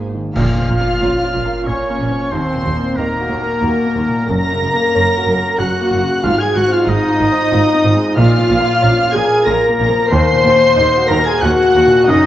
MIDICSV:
0, 0, Header, 1, 12, 480
1, 0, Start_track
1, 0, Key_signature, -5, "minor"
1, 0, Tempo, 657895
1, 259, Time_signature, 3, 2, 24, 8
1, 3612, Tempo, 645856
1, 7452, Tempo, 658617
1, 9015, End_track
2, 0, Start_track
2, 0, Title_t, "Violin section"
2, 0, Program_c, 0, 48
2, 254, Note_on_c, 0, 89, 106
2, 1189, Note_off_c, 0, 89, 0
2, 1222, Note_on_c, 0, 85, 89
2, 1694, Note_on_c, 0, 84, 110
2, 1699, Note_off_c, 0, 85, 0
2, 2170, Note_on_c, 0, 82, 104
2, 2171, Note_off_c, 0, 84, 0
2, 3115, Note_off_c, 0, 82, 0
2, 3138, Note_on_c, 0, 94, 127
2, 4073, Note_off_c, 0, 94, 0
2, 4094, Note_on_c, 0, 90, 98
2, 4562, Note_off_c, 0, 90, 0
2, 4574, Note_on_c, 0, 89, 122
2, 4691, Note_off_c, 0, 89, 0
2, 4695, Note_on_c, 0, 92, 112
2, 4812, Note_off_c, 0, 92, 0
2, 4816, Note_on_c, 0, 90, 124
2, 4932, Note_on_c, 0, 89, 102
2, 4933, Note_off_c, 0, 90, 0
2, 5051, Note_off_c, 0, 89, 0
2, 5054, Note_on_c, 0, 87, 124
2, 6010, Note_off_c, 0, 87, 0
2, 6012, Note_on_c, 0, 89, 127
2, 6717, Note_off_c, 0, 89, 0
2, 6718, Note_on_c, 0, 92, 123
2, 6959, Note_on_c, 0, 94, 102
2, 6964, Note_off_c, 0, 92, 0
2, 7441, Note_on_c, 0, 96, 127
2, 7446, Note_off_c, 0, 94, 0
2, 8150, Note_off_c, 0, 96, 0
2, 8154, Note_on_c, 0, 94, 126
2, 8282, Note_off_c, 0, 94, 0
2, 8283, Note_on_c, 0, 92, 120
2, 8400, Note_on_c, 0, 90, 106
2, 8407, Note_off_c, 0, 92, 0
2, 8882, Note_on_c, 0, 87, 127
2, 8886, Note_off_c, 0, 90, 0
2, 9015, Note_off_c, 0, 87, 0
2, 9015, End_track
3, 0, Start_track
3, 0, Title_t, "Oboe"
3, 0, Program_c, 1, 68
3, 260, Note_on_c, 1, 77, 98
3, 1220, Note_on_c, 1, 73, 86
3, 1231, Note_off_c, 1, 77, 0
3, 1691, Note_on_c, 1, 72, 81
3, 1702, Note_off_c, 1, 73, 0
3, 2166, Note_on_c, 1, 70, 92
3, 2177, Note_off_c, 1, 72, 0
3, 3129, Note_off_c, 1, 70, 0
3, 3134, Note_on_c, 1, 82, 100
3, 4086, Note_on_c, 1, 78, 96
3, 4098, Note_off_c, 1, 82, 0
3, 4563, Note_off_c, 1, 78, 0
3, 4568, Note_on_c, 1, 77, 114
3, 4684, Note_on_c, 1, 80, 93
3, 4695, Note_off_c, 1, 77, 0
3, 4794, Note_on_c, 1, 78, 97
3, 4806, Note_off_c, 1, 80, 0
3, 4929, Note_on_c, 1, 77, 95
3, 4940, Note_off_c, 1, 78, 0
3, 5050, Note_on_c, 1, 75, 113
3, 5062, Note_off_c, 1, 77, 0
3, 5804, Note_off_c, 1, 75, 0
3, 6008, Note_on_c, 1, 77, 123
3, 6731, Note_on_c, 1, 80, 103
3, 6742, Note_off_c, 1, 77, 0
3, 6970, Note_on_c, 1, 82, 109
3, 6982, Note_off_c, 1, 80, 0
3, 7439, Note_off_c, 1, 82, 0
3, 7444, Note_on_c, 1, 84, 127
3, 8160, Note_on_c, 1, 82, 111
3, 8171, Note_off_c, 1, 84, 0
3, 8291, Note_on_c, 1, 80, 120
3, 8302, Note_off_c, 1, 82, 0
3, 8402, Note_on_c, 1, 78, 121
3, 8413, Note_off_c, 1, 80, 0
3, 8893, Note_on_c, 1, 75, 127
3, 8904, Note_off_c, 1, 78, 0
3, 9015, Note_off_c, 1, 75, 0
3, 9015, End_track
4, 0, Start_track
4, 0, Title_t, "Violin section"
4, 0, Program_c, 2, 48
4, 0, Note_on_c, 2, 68, 62
4, 0, Note_on_c, 2, 72, 62
4, 85, Note_off_c, 2, 72, 0
4, 86, Note_off_c, 2, 68, 0
4, 257, Note_on_c, 2, 77, 100
4, 1190, Note_off_c, 2, 77, 0
4, 1221, Note_on_c, 2, 73, 85
4, 1688, Note_off_c, 2, 73, 0
4, 1695, Note_on_c, 2, 72, 86
4, 2172, Note_off_c, 2, 72, 0
4, 2181, Note_on_c, 2, 70, 101
4, 3136, Note_on_c, 2, 82, 108
4, 3140, Note_off_c, 2, 70, 0
4, 4088, Note_on_c, 2, 78, 100
4, 4092, Note_off_c, 2, 82, 0
4, 4569, Note_off_c, 2, 78, 0
4, 4572, Note_on_c, 2, 77, 98
4, 4688, Note_off_c, 2, 77, 0
4, 4698, Note_on_c, 2, 80, 88
4, 4809, Note_on_c, 2, 78, 95
4, 4813, Note_off_c, 2, 80, 0
4, 4929, Note_off_c, 2, 78, 0
4, 4929, Note_on_c, 2, 77, 90
4, 5039, Note_on_c, 2, 75, 115
4, 5049, Note_off_c, 2, 77, 0
4, 6003, Note_off_c, 2, 75, 0
4, 6018, Note_on_c, 2, 77, 127
4, 6720, Note_off_c, 2, 77, 0
4, 6726, Note_on_c, 2, 80, 113
4, 6963, Note_on_c, 2, 82, 100
4, 6968, Note_off_c, 2, 80, 0
4, 7445, Note_on_c, 2, 84, 125
4, 7448, Note_off_c, 2, 82, 0
4, 8167, Note_off_c, 2, 84, 0
4, 8172, Note_on_c, 2, 82, 102
4, 8287, Note_on_c, 2, 80, 114
4, 8291, Note_off_c, 2, 82, 0
4, 8407, Note_on_c, 2, 78, 127
4, 8409, Note_off_c, 2, 80, 0
4, 8880, Note_on_c, 2, 75, 127
4, 8890, Note_off_c, 2, 78, 0
4, 9015, Note_off_c, 2, 75, 0
4, 9015, End_track
5, 0, Start_track
5, 0, Title_t, "Clarinet"
5, 0, Program_c, 3, 71
5, 267, Note_on_c, 3, 65, 94
5, 1229, Note_on_c, 3, 61, 76
5, 1240, Note_off_c, 3, 65, 0
5, 1702, Note_off_c, 3, 61, 0
5, 1705, Note_on_c, 3, 60, 77
5, 2169, Note_on_c, 3, 58, 86
5, 2180, Note_off_c, 3, 60, 0
5, 3134, Note_off_c, 3, 58, 0
5, 3139, Note_on_c, 3, 70, 102
5, 4087, Note_on_c, 3, 66, 94
5, 4098, Note_off_c, 3, 70, 0
5, 4568, Note_off_c, 3, 66, 0
5, 4577, Note_on_c, 3, 65, 98
5, 4694, Note_on_c, 3, 68, 94
5, 4705, Note_off_c, 3, 65, 0
5, 4809, Note_on_c, 3, 66, 102
5, 4820, Note_off_c, 3, 68, 0
5, 4932, Note_on_c, 3, 65, 93
5, 4944, Note_off_c, 3, 66, 0
5, 5053, Note_on_c, 3, 63, 112
5, 5064, Note_off_c, 3, 65, 0
5, 5805, Note_off_c, 3, 63, 0
5, 6009, Note_on_c, 3, 65, 105
5, 6734, Note_on_c, 3, 68, 104
5, 6745, Note_off_c, 3, 65, 0
5, 6974, Note_on_c, 3, 70, 100
5, 6985, Note_off_c, 3, 68, 0
5, 7454, Note_off_c, 3, 70, 0
5, 7457, Note_on_c, 3, 72, 127
5, 8177, Note_on_c, 3, 70, 109
5, 8188, Note_off_c, 3, 72, 0
5, 8302, Note_on_c, 3, 68, 106
5, 8313, Note_off_c, 3, 70, 0
5, 8422, Note_on_c, 3, 66, 111
5, 8433, Note_off_c, 3, 68, 0
5, 8885, Note_off_c, 3, 66, 0
5, 8889, Note_on_c, 3, 63, 126
5, 9015, Note_off_c, 3, 63, 0
5, 9015, End_track
6, 0, Start_track
6, 0, Title_t, "French horn section"
6, 0, Program_c, 4, 60
6, 250, Note_on_c, 4, 65, 93
6, 1187, Note_off_c, 4, 65, 0
6, 1218, Note_on_c, 4, 61, 84
6, 1697, Note_off_c, 4, 61, 0
6, 1711, Note_on_c, 4, 60, 79
6, 2170, Note_off_c, 4, 60, 0
6, 2177, Note_on_c, 4, 58, 98
6, 3126, Note_on_c, 4, 70, 98
6, 3138, Note_off_c, 4, 58, 0
6, 4086, Note_off_c, 4, 70, 0
6, 4093, Note_on_c, 4, 66, 99
6, 4564, Note_on_c, 4, 65, 100
6, 4571, Note_off_c, 4, 66, 0
6, 4681, Note_on_c, 4, 68, 98
6, 4684, Note_off_c, 4, 65, 0
6, 4801, Note_on_c, 4, 66, 99
6, 4805, Note_off_c, 4, 68, 0
6, 4925, Note_off_c, 4, 66, 0
6, 4926, Note_on_c, 4, 65, 90
6, 5048, Note_off_c, 4, 65, 0
6, 5054, Note_on_c, 4, 63, 120
6, 6010, Note_off_c, 4, 63, 0
6, 6012, Note_on_c, 4, 65, 119
6, 6725, Note_on_c, 4, 68, 106
6, 6732, Note_off_c, 4, 65, 0
6, 6967, Note_off_c, 4, 68, 0
6, 6972, Note_on_c, 4, 70, 115
6, 7446, Note_on_c, 4, 72, 115
6, 7453, Note_off_c, 4, 70, 0
6, 8047, Note_off_c, 4, 72, 0
6, 8171, Note_on_c, 4, 70, 120
6, 8289, Note_off_c, 4, 70, 0
6, 8292, Note_on_c, 4, 68, 101
6, 8409, Note_off_c, 4, 68, 0
6, 8411, Note_on_c, 4, 66, 127
6, 8882, Note_off_c, 4, 66, 0
6, 8894, Note_on_c, 4, 63, 127
6, 9015, Note_off_c, 4, 63, 0
6, 9015, End_track
7, 0, Start_track
7, 0, Title_t, "Viola section"
7, 0, Program_c, 5, 48
7, 0, Note_on_c, 5, 56, 59
7, 0, Note_on_c, 5, 63, 61
7, 81, Note_off_c, 5, 63, 0
7, 82, Note_off_c, 5, 56, 0
7, 258, Note_on_c, 5, 65, 97
7, 1191, Note_off_c, 5, 65, 0
7, 1217, Note_on_c, 5, 61, 87
7, 1696, Note_off_c, 5, 61, 0
7, 1696, Note_on_c, 5, 60, 88
7, 2171, Note_on_c, 5, 58, 72
7, 2172, Note_off_c, 5, 60, 0
7, 3133, Note_on_c, 5, 70, 97
7, 3135, Note_off_c, 5, 58, 0
7, 4071, Note_off_c, 5, 70, 0
7, 4091, Note_on_c, 5, 66, 103
7, 4568, Note_on_c, 5, 65, 107
7, 4570, Note_off_c, 5, 66, 0
7, 4679, Note_on_c, 5, 68, 93
7, 4686, Note_off_c, 5, 65, 0
7, 4801, Note_on_c, 5, 66, 99
7, 4804, Note_off_c, 5, 68, 0
7, 4918, Note_on_c, 5, 65, 102
7, 4925, Note_off_c, 5, 66, 0
7, 5041, Note_on_c, 5, 63, 105
7, 5044, Note_off_c, 5, 65, 0
7, 5998, Note_on_c, 5, 65, 125
7, 6003, Note_off_c, 5, 63, 0
7, 6710, Note_off_c, 5, 65, 0
7, 6725, Note_on_c, 5, 68, 109
7, 6961, Note_on_c, 5, 70, 106
7, 6967, Note_off_c, 5, 68, 0
7, 7446, Note_on_c, 5, 72, 120
7, 7448, Note_off_c, 5, 70, 0
7, 8153, Note_off_c, 5, 72, 0
7, 8158, Note_on_c, 5, 70, 108
7, 8284, Note_off_c, 5, 70, 0
7, 8288, Note_on_c, 5, 68, 102
7, 8400, Note_on_c, 5, 66, 115
7, 8409, Note_off_c, 5, 68, 0
7, 8877, Note_off_c, 5, 66, 0
7, 8885, Note_on_c, 5, 63, 127
7, 9015, Note_off_c, 5, 63, 0
7, 9015, End_track
8, 0, Start_track
8, 0, Title_t, "Grand piano"
8, 0, Program_c, 6, 0
8, 0, Control_c, 6, 64, 127
8, 0, Note_on_c, 6, 44, 52
8, 0, Note_on_c, 6, 51, 43
8, 0, Note_on_c, 6, 58, 41
8, 0, Note_on_c, 6, 63, 41
8, 0, Note_on_c, 6, 68, 46
8, 107, Note_off_c, 6, 51, 0
8, 107, Note_on_c, 6, 51, 44
8, 202, Note_off_c, 6, 58, 0
8, 230, Note_off_c, 6, 44, 0
8, 259, Note_on_c, 6, 46, 71
8, 265, Note_off_c, 6, 51, 0
8, 274, Control_c, 6, 64, 0
8, 275, Note_off_c, 6, 63, 0
8, 280, Note_off_c, 6, 68, 0
8, 375, Control_c, 6, 64, 127
8, 425, Note_on_c, 6, 53, 44
8, 585, Note_on_c, 6, 58, 49
8, 681, Note_off_c, 6, 53, 0
8, 747, Note_on_c, 6, 61, 51
8, 840, Note_off_c, 6, 58, 0
8, 905, Note_on_c, 6, 65, 61
8, 1000, Note_off_c, 6, 61, 0
8, 1062, Note_on_c, 6, 70, 57
8, 1158, Note_off_c, 6, 65, 0
8, 1228, Note_on_c, 6, 65, 56
8, 1317, Note_off_c, 6, 70, 0
8, 1384, Note_on_c, 6, 58, 53
8, 1479, Note_off_c, 6, 65, 0
8, 1540, Note_on_c, 6, 53, 51
8, 1637, Note_off_c, 6, 58, 0
8, 1668, Note_off_c, 6, 46, 0
8, 1697, Note_on_c, 6, 39, 69
8, 1698, Note_off_c, 6, 53, 0
8, 1712, Control_c, 6, 64, 0
8, 1815, Control_c, 6, 64, 127
8, 1859, Note_on_c, 6, 46, 48
8, 2021, Note_on_c, 6, 58, 59
8, 2111, Note_off_c, 6, 46, 0
8, 2182, Note_on_c, 6, 63, 51
8, 2271, Note_off_c, 6, 58, 0
8, 2342, Note_on_c, 6, 66, 65
8, 2429, Note_off_c, 6, 63, 0
8, 2495, Note_on_c, 6, 70, 57
8, 2589, Note_off_c, 6, 66, 0
8, 2655, Note_on_c, 6, 66, 64
8, 2747, Note_off_c, 6, 70, 0
8, 2819, Note_on_c, 6, 58, 55
8, 2911, Note_off_c, 6, 66, 0
8, 2980, Note_on_c, 6, 46, 56
8, 3076, Note_off_c, 6, 58, 0
8, 3106, Note_off_c, 6, 39, 0
8, 3137, Note_on_c, 6, 42, 77
8, 3139, Note_off_c, 6, 46, 0
8, 3151, Control_c, 6, 64, 0
8, 3260, Control_c, 6, 64, 127
8, 3303, Note_on_c, 6, 49, 57
8, 3453, Note_on_c, 6, 58, 65
8, 3553, Note_off_c, 6, 49, 0
8, 3608, Note_on_c, 6, 61, 61
8, 3707, Note_off_c, 6, 58, 0
8, 3779, Note_on_c, 6, 66, 72
8, 3865, Note_off_c, 6, 61, 0
8, 3931, Note_on_c, 6, 70, 63
8, 4031, Note_off_c, 6, 66, 0
8, 4081, Note_on_c, 6, 66, 71
8, 4188, Note_off_c, 6, 70, 0
8, 4249, Note_on_c, 6, 58, 62
8, 4342, Note_off_c, 6, 66, 0
8, 4410, Note_on_c, 6, 49, 55
8, 4506, Note_off_c, 6, 58, 0
8, 4541, Note_off_c, 6, 42, 0
8, 4564, Note_on_c, 6, 44, 79
8, 4570, Note_off_c, 6, 49, 0
8, 4584, Control_c, 6, 64, 0
8, 4688, Control_c, 6, 64, 127
8, 4724, Note_on_c, 6, 56, 53
8, 4892, Note_on_c, 6, 60, 62
8, 4982, Note_off_c, 6, 56, 0
8, 5041, Note_on_c, 6, 56, 61
8, 5147, Note_off_c, 6, 60, 0
8, 5204, Note_on_c, 6, 65, 67
8, 5301, Note_off_c, 6, 56, 0
8, 5371, Note_on_c, 6, 72, 63
8, 5462, Note_off_c, 6, 65, 0
8, 5524, Note_on_c, 6, 65, 74
8, 5625, Note_off_c, 6, 72, 0
8, 5680, Note_on_c, 6, 60, 70
8, 5781, Note_off_c, 6, 65, 0
8, 5834, Note_on_c, 6, 56, 71
8, 5940, Note_off_c, 6, 60, 0
8, 5975, Note_off_c, 6, 44, 0
8, 5998, Note_on_c, 6, 46, 93
8, 6001, Note_off_c, 6, 56, 0
8, 6022, Control_c, 6, 64, 0
8, 6122, Control_c, 6, 64, 127
8, 6162, Note_on_c, 6, 53, 54
8, 6323, Note_on_c, 6, 58, 74
8, 6421, Note_off_c, 6, 53, 0
8, 6479, Note_on_c, 6, 61, 62
8, 6582, Note_off_c, 6, 58, 0
8, 6648, Note_on_c, 6, 65, 73
8, 6740, Note_off_c, 6, 61, 0
8, 6805, Note_on_c, 6, 70, 71
8, 6905, Note_off_c, 6, 65, 0
8, 6966, Note_on_c, 6, 65, 83
8, 7063, Note_off_c, 6, 70, 0
8, 7132, Note_on_c, 6, 58, 69
8, 7225, Note_off_c, 6, 65, 0
8, 7286, Note_on_c, 6, 53, 72
8, 7388, Note_off_c, 6, 58, 0
8, 7417, Note_off_c, 6, 46, 0
8, 7449, Note_off_c, 6, 53, 0
8, 7454, Note_on_c, 6, 39, 98
8, 7465, Control_c, 6, 64, 0
8, 7588, Control_c, 6, 64, 127
8, 7605, Note_on_c, 6, 46, 65
8, 7764, Note_on_c, 6, 58, 66
8, 7863, Note_off_c, 6, 46, 0
8, 7918, Note_on_c, 6, 63, 73
8, 8023, Note_off_c, 6, 58, 0
8, 8078, Note_on_c, 6, 66, 79
8, 8180, Note_off_c, 6, 63, 0
8, 8232, Note_on_c, 6, 70, 68
8, 8340, Note_off_c, 6, 66, 0
8, 8404, Note_on_c, 6, 66, 83
8, 8497, Note_off_c, 6, 70, 0
8, 8560, Note_on_c, 6, 58, 63
8, 8664, Note_off_c, 6, 66, 0
8, 8728, Note_on_c, 6, 46, 76
8, 8822, Note_off_c, 6, 58, 0
8, 8863, Note_off_c, 6, 39, 0
8, 8881, Note_on_c, 6, 42, 94
8, 8890, Note_off_c, 6, 46, 0
8, 8906, Control_c, 6, 64, 0
8, 9015, Note_off_c, 6, 42, 0
8, 9015, End_track
9, 0, Start_track
9, 0, Title_t, "Timpani"
9, 0, Program_c, 7, 47
9, 259, Note_on_c, 7, 46, 99
9, 952, Note_off_c, 7, 46, 0
9, 9015, End_track
10, 0, Start_track
10, 0, Title_t, "Cello section"
10, 0, Program_c, 8, 48
10, 0, Note_on_c, 8, 44, 65
10, 81, Note_off_c, 8, 44, 0
10, 253, Note_on_c, 8, 46, 77
10, 312, Note_off_c, 8, 46, 0
10, 497, Note_on_c, 8, 46, 69
10, 556, Note_off_c, 8, 46, 0
10, 738, Note_on_c, 8, 46, 72
10, 796, Note_off_c, 8, 46, 0
10, 973, Note_on_c, 8, 46, 70
10, 1032, Note_off_c, 8, 46, 0
10, 1221, Note_on_c, 8, 46, 75
10, 1280, Note_off_c, 8, 46, 0
10, 1454, Note_on_c, 8, 46, 68
10, 1513, Note_off_c, 8, 46, 0
10, 1700, Note_on_c, 8, 39, 85
10, 1759, Note_off_c, 8, 39, 0
10, 1933, Note_on_c, 8, 39, 68
10, 1991, Note_off_c, 8, 39, 0
10, 2167, Note_on_c, 8, 39, 70
10, 2225, Note_off_c, 8, 39, 0
10, 2406, Note_on_c, 8, 39, 75
10, 2465, Note_off_c, 8, 39, 0
10, 2643, Note_on_c, 8, 39, 77
10, 2701, Note_off_c, 8, 39, 0
10, 2889, Note_on_c, 8, 39, 82
10, 2948, Note_off_c, 8, 39, 0
10, 3131, Note_on_c, 8, 42, 76
10, 3190, Note_off_c, 8, 42, 0
10, 3374, Note_on_c, 8, 42, 77
10, 3432, Note_off_c, 8, 42, 0
10, 3611, Note_on_c, 8, 42, 78
10, 3671, Note_off_c, 8, 42, 0
10, 3846, Note_on_c, 8, 42, 80
10, 3906, Note_off_c, 8, 42, 0
10, 4085, Note_on_c, 8, 42, 88
10, 4144, Note_off_c, 8, 42, 0
10, 4327, Note_on_c, 8, 42, 85
10, 4387, Note_off_c, 8, 42, 0
10, 4570, Note_on_c, 8, 44, 98
10, 4629, Note_off_c, 8, 44, 0
10, 4807, Note_on_c, 8, 44, 87
10, 4866, Note_off_c, 8, 44, 0
10, 5042, Note_on_c, 8, 44, 96
10, 5102, Note_off_c, 8, 44, 0
10, 5282, Note_on_c, 8, 44, 91
10, 5342, Note_off_c, 8, 44, 0
10, 5522, Note_on_c, 8, 44, 86
10, 5582, Note_off_c, 8, 44, 0
10, 5765, Note_on_c, 8, 44, 91
10, 5825, Note_off_c, 8, 44, 0
10, 6014, Note_on_c, 8, 46, 100
10, 6073, Note_off_c, 8, 46, 0
10, 6247, Note_on_c, 8, 46, 94
10, 6307, Note_off_c, 8, 46, 0
10, 6487, Note_on_c, 8, 46, 91
10, 6547, Note_off_c, 8, 46, 0
10, 6732, Note_on_c, 8, 46, 85
10, 6792, Note_off_c, 8, 46, 0
10, 6971, Note_on_c, 8, 46, 97
10, 7030, Note_off_c, 8, 46, 0
10, 7216, Note_on_c, 8, 46, 85
10, 7276, Note_off_c, 8, 46, 0
10, 7450, Note_on_c, 8, 39, 110
10, 7508, Note_off_c, 8, 39, 0
10, 7688, Note_on_c, 8, 39, 87
10, 7746, Note_off_c, 8, 39, 0
10, 7923, Note_on_c, 8, 39, 85
10, 7981, Note_off_c, 8, 39, 0
10, 8166, Note_on_c, 8, 39, 99
10, 8224, Note_off_c, 8, 39, 0
10, 8407, Note_on_c, 8, 39, 107
10, 8466, Note_off_c, 8, 39, 0
10, 8649, Note_on_c, 8, 39, 86
10, 8707, Note_off_c, 8, 39, 0
10, 8887, Note_on_c, 8, 42, 97
10, 8945, Note_off_c, 8, 42, 0
10, 9015, End_track
11, 0, Start_track
11, 0, Title_t, "Double bass section"
11, 0, Program_c, 10, 48
11, 0, Note_on_c, 10, 32, 69
11, 82, Note_off_c, 10, 32, 0
11, 254, Note_on_c, 10, 34, 68
11, 313, Note_off_c, 10, 34, 0
11, 496, Note_on_c, 10, 34, 72
11, 554, Note_off_c, 10, 34, 0
11, 743, Note_on_c, 10, 34, 80
11, 802, Note_off_c, 10, 34, 0
11, 978, Note_on_c, 10, 34, 75
11, 1036, Note_off_c, 10, 34, 0
11, 1220, Note_on_c, 10, 34, 78
11, 1278, Note_off_c, 10, 34, 0
11, 1453, Note_on_c, 10, 34, 73
11, 1512, Note_off_c, 10, 34, 0
11, 1699, Note_on_c, 10, 39, 72
11, 1757, Note_off_c, 10, 39, 0
11, 1937, Note_on_c, 10, 39, 69
11, 1995, Note_off_c, 10, 39, 0
11, 2171, Note_on_c, 10, 39, 78
11, 2229, Note_off_c, 10, 39, 0
11, 2409, Note_on_c, 10, 39, 74
11, 2467, Note_off_c, 10, 39, 0
11, 2649, Note_on_c, 10, 39, 77
11, 2707, Note_off_c, 10, 39, 0
11, 2891, Note_on_c, 10, 39, 71
11, 2949, Note_off_c, 10, 39, 0
11, 3137, Note_on_c, 10, 30, 81
11, 3196, Note_off_c, 10, 30, 0
11, 3375, Note_on_c, 10, 30, 78
11, 3433, Note_off_c, 10, 30, 0
11, 3611, Note_on_c, 10, 30, 80
11, 3670, Note_off_c, 10, 30, 0
11, 3853, Note_on_c, 10, 30, 74
11, 3912, Note_off_c, 10, 30, 0
11, 4093, Note_on_c, 10, 30, 90
11, 4153, Note_off_c, 10, 30, 0
11, 4330, Note_on_c, 10, 30, 76
11, 4390, Note_off_c, 10, 30, 0
11, 4567, Note_on_c, 10, 32, 94
11, 4627, Note_off_c, 10, 32, 0
11, 4805, Note_on_c, 10, 32, 82
11, 4864, Note_off_c, 10, 32, 0
11, 5043, Note_on_c, 10, 32, 85
11, 5103, Note_off_c, 10, 32, 0
11, 5289, Note_on_c, 10, 32, 87
11, 5349, Note_off_c, 10, 32, 0
11, 5530, Note_on_c, 10, 32, 96
11, 5589, Note_off_c, 10, 32, 0
11, 5765, Note_on_c, 10, 32, 85
11, 5824, Note_off_c, 10, 32, 0
11, 6004, Note_on_c, 10, 34, 95
11, 6064, Note_off_c, 10, 34, 0
11, 6242, Note_on_c, 10, 34, 82
11, 6301, Note_off_c, 10, 34, 0
11, 6491, Note_on_c, 10, 34, 92
11, 6551, Note_off_c, 10, 34, 0
11, 6730, Note_on_c, 10, 34, 84
11, 6789, Note_off_c, 10, 34, 0
11, 6970, Note_on_c, 10, 34, 110
11, 7030, Note_off_c, 10, 34, 0
11, 7210, Note_on_c, 10, 34, 87
11, 7269, Note_off_c, 10, 34, 0
11, 7453, Note_on_c, 10, 39, 110
11, 7512, Note_off_c, 10, 39, 0
11, 7696, Note_on_c, 10, 39, 95
11, 7754, Note_off_c, 10, 39, 0
11, 7931, Note_on_c, 10, 39, 97
11, 7989, Note_off_c, 10, 39, 0
11, 8167, Note_on_c, 10, 39, 97
11, 8225, Note_off_c, 10, 39, 0
11, 8411, Note_on_c, 10, 39, 98
11, 8469, Note_off_c, 10, 39, 0
11, 8646, Note_on_c, 10, 39, 85
11, 8705, Note_off_c, 10, 39, 0
11, 8890, Note_on_c, 10, 30, 107
11, 8948, Note_off_c, 10, 30, 0
11, 9015, End_track
12, 0, Start_track
12, 0, Title_t, "Drums"
12, 260, Note_on_c, 9, 35, 87
12, 260, Note_on_c, 9, 49, 88
12, 333, Note_off_c, 9, 35, 0
12, 333, Note_off_c, 9, 49, 0
12, 9015, End_track
0, 0, End_of_file